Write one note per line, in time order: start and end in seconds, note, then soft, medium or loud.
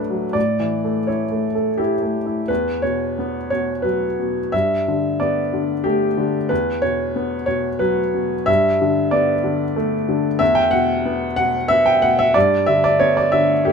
0.00 0.31 D2 soft
0.00 0.35 A2 soft
0.00 0.10 F#3 soft
0.00 0.37 A3 soft
0.00 0.38 D4 soft
0.00 0.37 F#4 soft
0.00 0.37 A4 medium
0.00 0.34 B4 medium
0.00 0.33 D5 medium
0.10 0.35 F#3 soft
0.33 2.45 A2 soft
0.33 1.07 D5 medium
0.60 0.98 E3 soft
0.84 1.22 A3 soft
1.07 1.46 E4 soft
1.07 1.78 C#5 soft
1.32 1.69 A3 soft
1.55 1.93 A4 soft
1.78 2.17 E4 soft
1.78 2.49 G4 medium
2.03 2.40 A3 soft
2.26 2.49 E4 soft
2.48 4.49 E2 soft
2.48 2.83 B4 medium
2.82 3.37 B2 soft
2.82 3.49 C#5 medium
3.19 3.71 B3 soft
3.50 4.05 B2 soft
3.50 3.83 C#5 medium
3.82 4.39 F#3 soft
3.82 4.52 B4 medium
4.19 4.54 B2 soft
4.52 6.47 G2 soft
4.52 5.19 E5 medium
4.88 5.40 D3 soft
5.20 5.72 B3 soft
5.20 5.85 D5 medium
5.53 6.05 D3 soft
5.84 6.37 A3 soft
5.84 6.50 G4 medium
6.18 6.50 D3 soft
6.49 8.44 E2 soft
6.49 6.83 B4 medium
6.82 7.35 B2 soft
6.82 7.45 C#5 medium
7.16 7.67 B3 soft
7.46 8.00 B2 soft
7.46 7.79 C#5 medium
7.79 8.34 F#3 soft
7.79 8.47 B4 medium
8.14 8.48 B2 soft
8.46 10.36 G2 soft
8.46 9.11 E5 medium
8.81 9.32 D3 soft
9.11 9.63 B3 soft
9.11 9.75 D5 medium
9.44 9.95 D3 soft
9.76 10.27 A3 soft
10.09 10.41 D3 soft
10.39 12.31 E2 medium
10.39 10.56 E5 medium
10.55 10.72 G5 medium
10.71 11.25 B2 soft
10.71 11.35 F#5 medium
11.05 11.57 B3 soft
11.36 11.90 B2 soft
11.36 11.70 F#5 medium
11.68 12.22 B3 soft
11.68 11.86 E5 medium
11.86 12.02 G5 medium
12.02 12.36 B2 soft
12.02 12.18 F#5 medium
12.19 12.35 E5 medium
12.34 13.72 G2 medium
12.34 12.67 D5 medium
12.66 13.20 D3 soft
12.66 12.83 E5 medium
12.84 13.00 D5 medium
13.00 13.53 B3 soft
13.00 13.16 C#5 medium
13.17 13.33 D5 medium
13.32 13.72 D3 soft
13.32 13.66 E5 medium
13.65 13.72 A3 soft
13.65 13.72 G4 medium